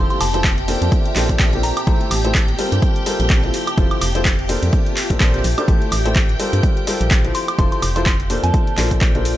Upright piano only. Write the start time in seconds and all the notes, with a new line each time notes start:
Already playing: F3 E4 F4 A4 C5
0.34 F3 E4 F4 A4 C5
0.68 A#2 D4 A4 A#4 C5
1.16 A#2 D4 A4 A#4 C5
1.53 A#2 D4 A4 A#4 C5
1.87 A3 E4 G4 A4 C5
2.25 A3 E4 G4 A4 C5
2.59 G3 F4 A4 A#4 C5
3.06 G3 F4 A4 A#4 C5
3.44 F3 E4 F4 A4 C5
3.78 F3 E4 F4 A4 C5
4.15 F3 E4 F4 A4 C5
4.49 A#2 D4 A4 A#4 C5
5.10 A#2 D4 A4 A#4 C5
5.20 A#2 D4 A4 A#4 C5
5.58 D4 A4 A#4 C5
5.68 A3 E4 G4 A4 C5
6.05 A3 E4 G4 A4 C5
6.40 G3 F4 A4 A#4 C5
6.87 G3 F4 A4 A#4 C5
7.25 F3 E4 F4 A4 C5
7.59 F3 E4 F4 A4 C5
7.96 F3 E4 F4 A4 C5
8.30 A#2 D4 A4 A#4 C5
8.78 A#2 D4 A4 A#4 C5
9.15 A#2 D4 A4 A#4 C5